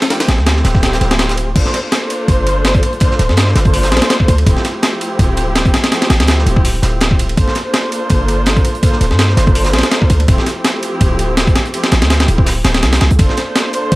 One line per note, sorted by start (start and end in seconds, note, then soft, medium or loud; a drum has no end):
0.02 snare loud
0.02 closed hi-hat soft
0.02 ride medium
0.09 0.35 F3 medium
0.09 0.36 A3 medium
0.09 0.36 C4 medium
0.09 0.35 E4 medium
0.09 0.36 G4 loud
0.09 snare loud
0.09 closed hi-hat medium
0.09 ride medium
0.20 snare soft
0.20 snare loud
0.20 ride medium
0.28 0.40 A1 medium
0.28 snare soft
0.28 snare loud
0.28 closed hi-hat medium
0.28 ride medium
0.38 0.63 D2 medium
0.38 1.53 F3 loud
0.38 1.53 A3 medium
0.38 1.53 C4 medium
0.38 1.53 E4 medium
0.38 1.53 G4 loud
0.38 snare medium
0.47 snare loud
0.47 closed hi-hat medium
0.47 ride medium
0.56 snare medium
0.64 1.00 D1 loud
0.64 snare loud
0.64 closed hi-hat medium
0.64 ride medium
0.74 kick medium
0.74 snare medium
0.83 snare loud
0.83 closed hi-hat medium
0.83 ride medium
0.93 snare loud
0.93 closed hi-hat medium
1.01 1.54 D1 medium
1.01 snare medium
1.01 ride medium
1.11 snare loud
1.11 closed hi-hat medium
1.11 ride medium
1.18 snare loud
1.18 closed hi-hat medium
1.18 ride medium
1.29 snare loud
1.29 closed hi-hat medium
1.37 closed hi-hat medium
1.37 ride medium
1.56 1.65 G1 loud
1.56 1.81 A#3 medium
1.56 1.81 D4 medium
1.56 1.81 F4 medium
1.56 1.81 A4 medium
1.56 1.81 C5 loud
1.56 kick loud
1.56 closed hi-hat medium
1.56 crash medium
1.56 ride medium
1.65 snare medium
1.65 snare soft
1.73 snare soft
1.73 snare medium
1.73 closed hi-hat medium
1.73 ride medium
1.84 2.99 A#3 loud
1.84 2.99 D4 medium
1.84 2.99 F4 medium
1.84 2.99 A4 medium
1.84 2.99 C5 loud
1.92 snare loud
1.92 closed hi-hat medium
1.92 ride medium
2.10 closed hi-hat medium
2.10 ride medium
2.28 2.76 G1 loud
2.28 kick loud
2.28 closed hi-hat medium
2.28 ride medium
2.47 closed hi-hat medium
2.47 ride medium
2.65 snare loud
2.65 closed hi-hat medium
2.65 ride medium
2.74 2.82 A#1 medium
2.74 kick medium
2.74 closed hi-hat soft
2.83 closed hi-hat medium
2.83 ride medium
2.93 closed hi-hat soft
3.00 3.26 A#3 medium
3.00 3.27 D4 medium
3.00 3.26 F4 medium
3.00 3.26 A4 medium
3.00 3.26 C5 loud
3.00 kick loud
3.00 closed hi-hat loud
3.00 ride medium
3.11 snare soft
3.19 3.31 D1 medium
3.19 snare soft
3.19 closed hi-hat medium
3.19 ride medium
3.29 3.54 G2 medium
3.29 4.44 A#3 loud
3.29 4.44 D4 medium
3.29 4.44 F4 medium
3.29 4.44 A4 medium
3.29 4.44 C5 loud
3.29 snare medium
3.37 snare loud
3.37 closed hi-hat medium
3.37 ride medium
3.47 snare medium
3.55 3.93 G1 loud
3.55 snare loud
3.55 closed hi-hat medium
3.55 ride medium
3.65 kick loud
3.65 closed hi-hat soft
3.74 closed hi-hat medium
3.74 open hi-hat medium
3.83 snare loud
3.83 closed hi-hat medium
3.92 4.01 A#1 loud
3.92 snare medium
3.92 ride medium
3.97 snare medium
3.97 ride medium
4.01 snare loud
4.01 closed hi-hat medium
4.01 ride medium
4.09 snare loud
4.09 closed hi-hat medium
4.09 ride medium
4.20 kick medium
4.28 4.45 D2 medium
4.28 closed hi-hat medium
4.28 ride medium
4.38 ride soft
4.46 4.55 D1 loud
4.46 4.72 F3 loud
4.46 4.72 A3 medium
4.46 4.72 C4 medium
4.46 4.72 E4 medium
4.46 4.72 G4 loud
4.46 kick loud
4.46 closed hi-hat medium
4.46 ride medium
4.56 snare medium
4.56 snare soft
4.64 snare soft
4.64 snare medium
4.64 closed hi-hat medium
4.64 ride medium
4.74 5.90 F3 loud
4.74 5.89 A3 medium
4.74 5.90 C4 medium
4.74 5.89 E4 medium
4.74 5.90 G4 loud
4.82 snare loud
4.82 closed hi-hat medium
4.82 ride medium
5.01 closed hi-hat medium
5.01 ride medium
5.19 5.67 D1 loud
5.19 kick loud
5.19 closed hi-hat medium
5.19 ride medium
5.37 closed hi-hat medium
5.37 ride medium
5.55 snare loud
5.55 closed hi-hat medium
5.55 ride medium
5.65 5.73 F1 medium
5.65 kick medium
5.65 closed hi-hat soft
5.74 snare loud
5.74 closed hi-hat medium
5.74 ride medium
5.84 snare loud
5.84 closed hi-hat soft
5.84 ride medium
5.92 6.17 F3 medium
5.92 6.17 A3 medium
5.92 6.17 C4 medium
5.92 6.17 E4 medium
5.92 6.17 G4 loud
5.92 snare loud
5.92 closed hi-hat medium
5.92 ride medium
6.02 snare soft
6.02 snare loud
6.02 ride medium
6.10 6.21 A1 medium
6.10 snare loud
6.10 snare soft
6.10 closed hi-hat medium
6.10 ride medium
6.20 6.45 D2 medium
6.20 6.81 F3 loud
6.20 6.81 A3 medium
6.20 6.81 C4 medium
6.20 6.81 E4 medium
6.20 6.81 G4 loud
6.20 snare loud
6.20 ride medium
6.27 snare loud
6.27 closed hi-hat medium
6.27 ride medium
6.38 snare medium
6.46 6.81 D1 loud
6.46 closed hi-hat medium
6.46 ride medium
6.56 kick loud
6.65 closed hi-hat loud
6.65 open hi-hat medium
6.75 closed hi-hat soft
6.82 7.36 D1 loud
6.82 7.35 F3 medium
6.82 7.35 A3 medium
6.82 7.35 C4 medium
6.82 7.35 E4 medium
6.82 7.35 G4 medium
6.82 snare loud
6.82 closed hi-hat medium
6.82 ride medium
7.00 snare medium
7.00 snare loud
7.00 closed hi-hat medium
7.00 ride medium
7.11 kick medium
7.19 closed hi-hat medium
7.19 ride medium
7.29 ride soft
7.37 7.46 G1 loud
7.37 7.63 A#3 medium
7.37 7.63 D4 medium
7.37 7.63 F4 medium
7.37 7.63 A4 medium
7.37 7.63 C5 loud
7.37 kick loud
7.37 closed hi-hat medium
7.37 ride medium
7.47 snare medium
7.47 snare soft
7.55 snare soft
7.55 snare medium
7.55 closed hi-hat medium
7.55 ride medium
7.65 8.81 A#3 loud
7.65 8.81 D4 medium
7.65 8.81 F4 medium
7.65 8.81 A4 medium
7.65 8.81 C5 loud
7.73 snare loud
7.73 closed hi-hat medium
7.73 ride medium
7.92 closed hi-hat medium
7.92 ride medium
8.09 8.58 G1 loud
8.09 kick loud
8.09 closed hi-hat medium
8.09 ride medium
8.28 closed hi-hat medium
8.28 ride medium
8.46 snare loud
8.46 closed hi-hat medium
8.46 ride medium
8.56 8.64 A#1 medium
8.56 kick loud
8.56 closed hi-hat soft
8.65 closed hi-hat medium
8.65 ride medium
8.75 closed hi-hat soft
8.83 9.09 A#3 medium
8.83 9.09 D4 medium
8.83 9.09 F4 medium
8.83 9.09 A4 medium
8.83 9.09 C5 loud
8.83 kick loud
8.83 closed hi-hat medium
8.83 ride medium
8.92 snare soft
9.01 9.12 D1 medium
9.01 snare soft
9.01 closed hi-hat medium
9.01 ride medium
9.11 9.36 G2 medium
9.11 10.26 A#3 loud
9.11 10.26 D4 medium
9.11 10.27 F4 medium
9.11 10.27 A4 medium
9.11 10.26 C5 loud
9.11 snare medium
9.19 snare loud
9.19 closed hi-hat medium
9.19 ride medium
9.28 snare medium
9.37 9.75 G1 loud
9.37 snare loud
9.37 closed hi-hat medium
9.37 ride medium
9.47 kick loud
9.47 closed hi-hat soft
9.55 closed hi-hat medium
9.55 open hi-hat medium
9.64 snare loud
9.64 closed hi-hat medium
9.73 9.83 A#1 loud
9.73 snare medium
9.73 closed hi-hat soft
9.73 ride medium
9.79 snare medium
9.79 ride medium
9.83 snare loud
9.83 closed hi-hat medium
9.83 ride medium
9.91 snare loud
9.91 closed hi-hat medium
9.91 ride medium
10.02 kick loud
10.10 10.26 D2 medium
10.10 closed hi-hat medium
10.10 ride medium
10.20 ride soft
10.28 10.37 D1 loud
10.28 10.54 F3 loud
10.28 10.54 A3 medium
10.28 10.54 C4 medium
10.28 10.54 E4 medium
10.28 10.54 G4 loud
10.28 kick loud
10.28 closed hi-hat medium
10.28 ride medium
10.38 snare soft
10.38 snare medium
10.46 snare medium
10.46 snare soft
10.46 closed hi-hat medium
10.46 ride medium
10.57 11.72 F3 loud
10.57 11.72 A3 medium
10.57 11.72 C4 medium
10.57 11.72 E4 medium
10.57 11.72 G4 loud
10.64 snare loud
10.64 closed hi-hat medium
10.64 ride medium
10.82 closed hi-hat medium
10.82 ride medium
11.01 11.49 D1 loud
11.01 kick loud
11.01 closed hi-hat medium
11.01 ride medium
11.19 closed hi-hat medium
11.19 ride medium
11.37 snare loud
11.37 closed hi-hat medium
11.37 ride medium
11.47 11.55 F1 medium
11.47 kick loud
11.47 closed hi-hat soft
11.56 snare loud
11.56 closed hi-hat medium
11.56 ride medium
11.65 closed hi-hat soft
11.73 12.00 F3 medium
11.73 12.00 A3 medium
11.73 12.00 C4 medium
11.73 12.00 E4 medium
11.73 12.00 G4 loud
11.73 closed hi-hat medium
11.73 ride medium
11.84 snare loud
11.84 snare soft
11.84 ride medium
11.91 12.03 A1 medium
11.91 snare medium
11.91 snare loud
11.91 closed hi-hat medium
11.91 ride medium
12.01 12.27 D2 medium
12.01 12.63 F3 loud
12.01 12.63 A3 medium
12.01 12.63 C4 medium
12.01 12.63 E4 medium
12.01 12.63 G4 loud
12.01 snare loud
12.01 ride medium
12.10 snare loud
12.10 closed hi-hat medium
12.10 ride medium
12.19 snare medium
12.19 snare loud
12.19 ride medium
12.28 12.63 D1 loud
12.28 closed hi-hat medium
12.28 ride medium
12.38 kick loud
12.46 snare loud
12.46 closed hi-hat medium
12.46 open hi-hat medium
12.64 12.84 D1 medium
12.64 13.17 F3 medium
12.64 13.17 A3 medium
12.64 13.17 C4 medium
12.64 13.17 E4 medium
12.64 13.17 G4 medium
12.64 snare loud
12.64 closed hi-hat medium
12.64 ride medium
12.74 snare loud
12.74 snare medium
12.74 ride medium
12.83 12.99 C2 loud
12.83 snare loud
12.83 closed hi-hat medium
12.83 ride medium
12.93 snare loud
12.93 closed hi-hat medium
12.93 ride medium
13.01 13.10 C2 medium
13.01 snare loud
13.01 snare medium
13.01 ride medium
13.10 13.18 C2 medium
13.10 closed hi-hat medium
13.19 13.28 G1 loud
13.19 13.45 A#3 medium
13.19 13.45 D4 medium
13.19 13.45 F4 medium
13.19 13.45 A4 medium
13.19 13.45 C5 loud
13.19 kick loud
13.19 closed hi-hat medium
13.19 ride medium
13.29 snare medium
13.29 snare soft
13.37 snare soft
13.37 snare medium
13.37 closed hi-hat medium
13.37 ride medium
13.47 13.96 A#3 loud
13.47 13.96 D4 medium
13.47 13.96 F4 medium
13.47 13.96 A4 medium
13.47 13.96 C5 loud
13.55 snare loud
13.55 closed hi-hat medium
13.55 ride medium
13.73 closed hi-hat medium
13.73 ride medium
13.92 13.96 G1 loud
13.92 kick loud
13.92 closed hi-hat medium
13.92 ride medium